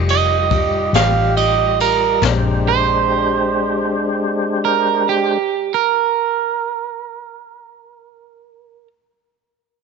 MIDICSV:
0, 0, Header, 1, 6, 480
1, 0, Start_track
1, 0, Tempo, 854701
1, 1252, Time_signature, 12, 3, 24, 8
1, 1253, Tempo, 875912
1, 5417, End_track
2, 0, Start_track
2, 0, Title_t, "Clean electric guitar"
2, 0, Program_c, 0, 27
2, 59, Note_on_c, 0, 75, 91
2, 514, Note_off_c, 0, 75, 0
2, 536, Note_on_c, 0, 77, 84
2, 763, Note_off_c, 0, 77, 0
2, 771, Note_on_c, 0, 75, 93
2, 1003, Note_off_c, 0, 75, 0
2, 1018, Note_on_c, 0, 70, 102
2, 1250, Note_off_c, 0, 70, 0
2, 1501, Note_on_c, 0, 72, 101
2, 2556, Note_off_c, 0, 72, 0
2, 2578, Note_on_c, 0, 70, 86
2, 2809, Note_off_c, 0, 70, 0
2, 2819, Note_on_c, 0, 67, 87
2, 3166, Note_off_c, 0, 67, 0
2, 3178, Note_on_c, 0, 70, 98
2, 4893, Note_off_c, 0, 70, 0
2, 5417, End_track
3, 0, Start_track
3, 0, Title_t, "Tonewheel organ"
3, 0, Program_c, 1, 16
3, 0, Note_on_c, 1, 55, 70
3, 0, Note_on_c, 1, 65, 71
3, 0, Note_on_c, 1, 67, 73
3, 0, Note_on_c, 1, 75, 71
3, 1243, Note_off_c, 1, 65, 0
3, 1243, Note_off_c, 1, 67, 0
3, 1243, Note_off_c, 1, 75, 0
3, 1245, Note_off_c, 1, 55, 0
3, 1257, Note_on_c, 1, 72, 68
3, 1258, Note_on_c, 1, 67, 64
3, 1259, Note_on_c, 1, 62, 70
3, 1260, Note_on_c, 1, 56, 64
3, 2977, Note_off_c, 1, 72, 0
3, 2978, Note_off_c, 1, 67, 0
3, 2980, Note_off_c, 1, 62, 0
3, 2981, Note_off_c, 1, 56, 0
3, 5417, End_track
4, 0, Start_track
4, 0, Title_t, "Horn section"
4, 0, Program_c, 2, 61
4, 0, Note_on_c, 2, 55, 78
4, 0, Note_on_c, 2, 63, 77
4, 0, Note_on_c, 2, 67, 88
4, 1165, Note_off_c, 2, 55, 0
4, 1165, Note_off_c, 2, 63, 0
4, 1165, Note_off_c, 2, 67, 0
4, 1260, Note_on_c, 2, 62, 68
4, 1261, Note_on_c, 2, 60, 67
4, 1264, Note_on_c, 2, 56, 80
4, 1268, Note_on_c, 2, 67, 85
4, 2976, Note_off_c, 2, 62, 0
4, 2977, Note_off_c, 2, 60, 0
4, 2980, Note_off_c, 2, 56, 0
4, 2984, Note_off_c, 2, 67, 0
4, 5417, End_track
5, 0, Start_track
5, 0, Title_t, "Fingered electric bass"
5, 0, Program_c, 3, 33
5, 0, Note_on_c, 3, 29, 90
5, 503, Note_off_c, 3, 29, 0
5, 522, Note_on_c, 3, 33, 93
5, 1229, Note_off_c, 3, 33, 0
5, 1247, Note_on_c, 3, 34, 92
5, 2963, Note_off_c, 3, 34, 0
5, 5417, End_track
6, 0, Start_track
6, 0, Title_t, "Drums"
6, 49, Note_on_c, 9, 51, 60
6, 105, Note_off_c, 9, 51, 0
6, 287, Note_on_c, 9, 36, 78
6, 289, Note_on_c, 9, 51, 55
6, 343, Note_off_c, 9, 36, 0
6, 345, Note_off_c, 9, 51, 0
6, 528, Note_on_c, 9, 51, 77
6, 537, Note_on_c, 9, 38, 110
6, 584, Note_off_c, 9, 51, 0
6, 593, Note_off_c, 9, 38, 0
6, 769, Note_on_c, 9, 51, 61
6, 825, Note_off_c, 9, 51, 0
6, 1010, Note_on_c, 9, 51, 63
6, 1066, Note_off_c, 9, 51, 0
6, 1252, Note_on_c, 9, 43, 98
6, 1261, Note_on_c, 9, 38, 94
6, 1307, Note_off_c, 9, 43, 0
6, 1315, Note_off_c, 9, 38, 0
6, 5417, End_track
0, 0, End_of_file